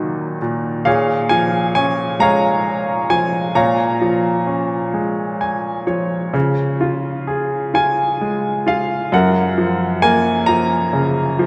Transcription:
0.00 0.83 D#2 medium
0.00 0.37 A#2 soft
0.00 0.82 D#3 soft
0.00 0.82 F#3 soft
0.00 0.38 F#4 soft
0.00 0.38 A#4 soft
0.00 0.38 D#5 medium
0.42 0.84 A#2 soft
0.85 3.51 A#2 medium
0.85 2.17 G#4 soft
0.85 2.17 C#5 soft
0.85 1.32 F5 medium
1.29 3.06 F3 soft
1.29 1.74 G#5 medium
1.75 3.52 C#4 soft
1.75 2.22 G#5 medium
2.19 3.51 G#3 soft
2.19 3.52 C#5 medium
2.19 3.52 F5 medium
2.19 3.13 A#5 medium
3.10 3.54 F3 soft
3.10 3.57 G#5 medium
3.55 6.30 A#2 medium
3.55 5.84 C#5 soft
3.55 5.84 F5 soft
3.55 5.84 A#5 medium
4.01 5.84 F3 soft
4.47 6.30 C#4 soft
4.94 6.30 G#3 soft
5.41 5.84 G#5 soft
5.87 6.33 F3 soft
5.87 6.31 C#5 soft
6.34 9.09 C#3 medium
6.81 7.72 F4 soft
7.27 9.09 G#4 soft
7.74 8.65 F4 soft
7.74 8.70 G#5 medium
8.21 9.10 G#3 soft
8.66 9.11 F4 soft
8.66 9.15 F5 medium
9.12 11.46 F#2 medium
9.12 10.46 A#4 soft
9.12 10.07 F#5 medium
9.58 10.47 F3 soft
10.02 11.46 A#3 medium
10.02 10.45 G#5 medium
10.46 11.38 F3 medium
10.46 11.46 A#5 medium
10.93 11.46 C#3 soft
11.39 11.46 F3 medium

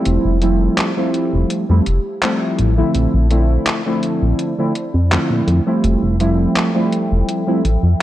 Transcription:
0.00 0.37 F3 medium
0.00 0.38 G3 medium
0.00 0.38 A3 medium
0.00 0.38 C4 medium
0.00 0.38 E4 loud
0.00 2.91 E5 medium
0.05 0.18 F1 medium
0.05 2.92 G4 medium
0.05 5.80 A5 medium
0.05 closed hi-hat medium
0.25 0.69 F1 medium
0.41 0.92 F3 medium
0.41 0.92 G3 medium
0.41 0.92 A3 medium
0.41 0.93 C4 medium
0.41 0.93 E4 loud
0.41 closed hi-hat medium
0.78 clap loud
0.78 closed hi-hat medium
0.96 1.64 F3 medium
0.96 1.64 G3 medium
0.96 1.65 A3 medium
0.96 1.65 C4 medium
0.96 1.65 E4 medium
1.14 closed hi-hat medium
1.33 1.45 F1 medium
1.50 closed hi-hat medium
1.69 1.81 F2 medium
1.69 1.83 F3 medium
1.69 1.83 G3 medium
1.69 1.83 A3 medium
1.69 1.83 C4 medium
1.69 1.84 E4 medium
1.86 1.99 F1 medium
1.86 closed hi-hat medium
2.22 2.73 F3 medium
2.22 2.73 G3 medium
2.22 2.73 A3 medium
2.22 2.73 C4 medium
2.22 2.74 E4 medium
2.22 clap loud
2.22 closed hi-hat medium
2.59 2.83 A1 loud
2.59 closed hi-hat medium
2.77 3.26 D3 medium
2.77 3.27 F3 medium
2.77 3.27 A3 medium
2.77 3.27 C4 medium
2.77 3.27 E4 loud
2.95 3.07 A#1 medium
2.95 5.81 E4 medium
2.95 5.81 C5 medium
2.95 5.81 D5 medium
2.95 closed hi-hat medium
3.14 3.58 A#1 medium
3.30 3.81 D3 medium
3.30 3.81 F3 medium
3.30 3.81 A3 medium
3.30 3.81 C4 medium
3.30 3.82 E4 loud
3.30 closed hi-hat medium
3.66 clap loud
3.66 closed hi-hat medium
3.85 4.53 D3 medium
3.85 4.54 F3 medium
3.85 4.54 A3 medium
3.85 4.54 C4 medium
3.85 4.54 E4 medium
4.03 closed hi-hat medium
4.22 4.34 A#1 medium
4.39 closed hi-hat medium
4.58 4.72 D3 medium
4.58 4.72 F3 medium
4.58 4.72 A3 medium
4.58 4.73 C4 medium
4.58 4.73 E4 medium
4.75 closed hi-hat medium
4.94 5.18 F2 medium
5.11 5.62 D3 medium
5.11 5.62 F3 medium
5.11 5.62 A3 medium
5.11 5.62 C4 medium
5.11 5.62 E4 medium
5.11 clap loud
5.11 closed hi-hat medium
5.30 5.42 A#2 medium
5.47 5.60 F2 loud
5.47 closed hi-hat medium
5.66 6.16 F3 medium
5.66 6.16 G3 medium
5.66 6.16 A3 medium
5.66 6.16 C4 medium
5.66 6.16 E4 loud
5.83 5.96 F1 medium
5.83 8.02 F3 medium
5.83 8.02 A4 medium
5.83 8.02 E5 medium
5.83 8.02 G5 medium
5.83 closed hi-hat medium
6.03 6.47 F1 loud
6.19 6.70 F3 medium
6.19 6.70 G3 medium
6.19 6.71 A3 medium
6.19 6.71 C4 medium
6.19 6.71 E4 loud
6.19 closed hi-hat medium
6.56 clap loud
6.56 closed hi-hat medium
6.74 7.42 F3 medium
6.74 7.43 G3 medium
6.74 7.43 A3 medium
6.74 7.43 C4 medium
6.74 7.43 E4 medium
6.92 closed hi-hat medium
7.11 7.23 F1 medium
7.29 closed hi-hat medium
7.47 7.61 F3 medium
7.47 7.61 G3 medium
7.47 7.61 A3 medium
7.47 7.61 C4 medium
7.47 7.62 E4 medium
7.65 7.77 A1 medium
7.65 closed hi-hat medium
7.83 7.95 F2 medium

